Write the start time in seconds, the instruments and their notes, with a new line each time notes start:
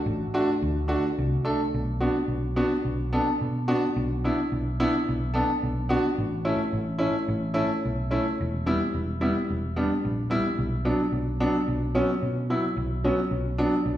0.06 picked electric bass A1
0.34 upright piano A3 D4 F#4
0.62 picked electric bass D2
0.88 upright piano A3 D4 F#4
1.19 picked electric bass C2
1.45 upright piano A3 D4 A4
1.74 picked electric bass B1
2.00 upright piano B3 D4 F#4
2.28 picked electric bass B1
2.56 upright piano B3 D4 F#4
2.85 picked electric bass B1
3.13 upright piano B3 D4 A4
3.41 picked electric bass B2
3.68 upright piano B3 D4 F#4
3.96 picked electric bass B1
4.24 upright piano B3 D4 E4
4.52 picked electric bass B1
4.80 upright piano B3 D4 E4
5.09 picked electric bass B1
5.34 upright piano B3 D4 A4
5.63 picked electric bass B1
5.89 upright piano B3 D4 F#4
6.18 picked electric bass A1
6.45 upright piano A3 C#4 E4
6.73 picked electric bass A1
6.99 upright piano A3 C#4 E4
7.28 picked electric bass A1
7.54 upright piano A3 C#4 E4
7.85 picked electric bass B1
8.11 upright piano A3 C#4 E4
8.41 picked electric bass E1
8.66 upright piano G3 B3 E4
8.94 picked electric bass E1
9.21 upright piano G3 B3 E4
9.50 picked electric bass E1
9.76 upright piano G3 B3 D4
10.05 picked electric bass A#1
10.30 upright piano G3 B3 E4
10.59 picked electric bass B1
10.85 upright piano F#3 B3 D4
11.12 picked electric bass B1
11.40 upright piano F#3 B3 D4
11.68 picked electric bass B1
11.95 upright piano F#3 B3 C#4
12.22 picked electric bass B2
12.50 upright piano F#3 B3 E4
12.77 picked electric bass B1
13.04 upright piano F#3 B3 C#4
13.31 picked electric bass B1
13.58 upright piano F#3 B3 D4
13.86 picked electric bass B1